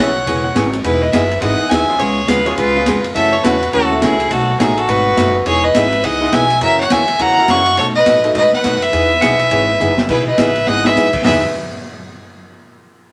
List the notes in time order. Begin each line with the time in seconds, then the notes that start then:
Already playing: C#5 E5 F#5
0.00 B1
0.16 F#5
0.27 E1 C#3 E3 B3 C#4 G#4 C#5, kick, ride
0.44 F#5
0.55 G#1 C#3 E3 B3 C#4 G#4 C#5, kick, snare, hi-hat pedal, ride
0.73 ride
0.84 E1 E3 B3 D#4 E4 G#4 B4, kick, ride
1.02 B4 D#5
1.13 F#1 E3 B3 D#4 G#4 B4 E5, kick, snare, hi-hat pedal, ride
1.31 ride
1.40 G#1 E3 G#3 B3 D#4 E4 G#4 D#5 F#5, kick, ride
1.60 muted upright bass stroke
1.70 D#2 E3 B3 D#4 G#4 E5 G#5, kick, snare, hi-hat pedal, ride
1.88 G#3 B3 C#4 F4 G#4, muted upright bass stroke
1.99 C#2 C#3 G#3 B3 F4 G#4 C#5, kick, ride
2.28 D#2 C#3 G#3 B3 F4 G#4 B4 F5, kick, snare, hi-hat pedal, ride
2.45 G#3 B3 C#4 F4 G#4 C#5, ride
2.57 C#2 C#3 G#3 B3 F4 G#4 B4, kick, ride
2.75 G#3 B3 C#4 F4 G#4
2.86 F2 C#3 G#3 B3 F4 G#4, kick, snare, hi-hat pedal, ride
3.04 ride
3.15 F#2 C#3 E3 A3 C#4 F#4 A4 E5, kick, ride
3.33 A4 C#5
3.44 E2 C#3 E3 A3 C#4 F#4 B4, kick, snare, hi-hat pedal, ride
3.63 ride
3.73 D#2 C#3 E3 A3 C#4 F#4 A4, kick, ride
3.90 A3 C#4 E4 F#4 A4
4.01 C#2 C#3 E3 A3 C#4 E4 F#4 G#4, kick, snare, hi-hat pedal, ride
4.20 ride
4.30 B1 B2 F#3 A3 D#4 F#4 A4, kick, ride
4.59 A1 B2 F#3 A3 B3 D#4 F#4 G#4 A4, kick, snare, hi-hat pedal, ride
4.77 F#4 A4, ride
4.88 G#1 B2 F#3 A3 D#4 F#4 B4, kick, ride
5.16 F#1 B2 F#3 A3 B3 D#4 F#4 B4, kick, snare, hi-hat pedal, ride
5.46 E1 E3 B3 D#4 G#4 C#5, kick, ride
5.64 B4 D#5
5.75 G#1 E3 B3 D#4 G#4 B4 E5, kick, snare, hi-hat pedal, ride
5.92 ride
6.03 C#2 E3 B3 D#4 G#4 D#5 F#5, kick, ride
6.21 G#3 B3 D#4 E4 G#4
6.32 B1 E3 B3 D#4 G#4 E5 G#5, kick, snare, hi-hat pedal, ride
6.50 ride
6.61 F#2 C#3 E3 A#3 C#4 F#4 A#4 E5, kick, ride
6.80 C#5 F#5
6.90 D#2 C#3 E3 A#3 C#4 F#4 E5 G#5, kick, snare, hi-hat pedal, ride
7.08 ride
7.19 E2 C#3 E3 A#3 C#4 F#4 F#5 A#5, kick, ride
7.37 A#3 C#4 E4 F#4 A#4
7.48 F#2 C#3 E3 A#3 C#4 F#4 F#5 C#6, kick, snare, hi-hat pedal, ride
7.66 ride
7.77 B2 F#3 A3 D#4 F#4 A4 C#5, kick, ride
7.95 B4 D#5
8.06 A2 B2 F#3 A3 D#4 F#4, kick, snare, hi-hat pedal, ride
8.23 A3 B3 D#4 F#4 A4, ride
8.34 G#2 B2 F#3 A3 D#4 F#4 B4 D#5, kick, ride
8.52 B4 F#5, muted upright bass stroke, snare
8.64 F#2 B2 F#3 A3 D#4 F#4, kick, snare, hi-hat pedal, ride
8.82 B4 E5, ride
8.92 E2 E3 B3 D#4 G#4, kick, ride
9.21 B1 E3 G#3 B3 D#4 E4 G#4 F#5, kick, snare, hi-hat pedal, ride
9.39 E5, ride
9.51 G#1 E3 B3 D#4 G#4 C#5, kick, ride
9.69 E5
9.80 F#1 E3 B3 D#4 G#4, hi-hat pedal, mid tom
9.98 snare
10.09 B1 E3 B3 D#4 E4 G#4 B4, kick, crash
10.27 B4 D#5
10.38 A1 E3 B3 D#4 G#4 B4 E5, kick, snare, hi-hat pedal, ride
10.56 ride
10.67 G#1 E3 B3 D#4 G#4 D#5 F#5, snare
10.83 G#3 B3 D#4 E4 G#4 B4 E5, snare
10.96 G#2 E3 B3 D#4 G#4, snare, hi-hat pedal
11.13 muted upright bass stroke, kick, crash
11.24 E2 E3 G#3 B3 D#4 E4 G#4 B4 E5, snare, floor tom, open hi-hat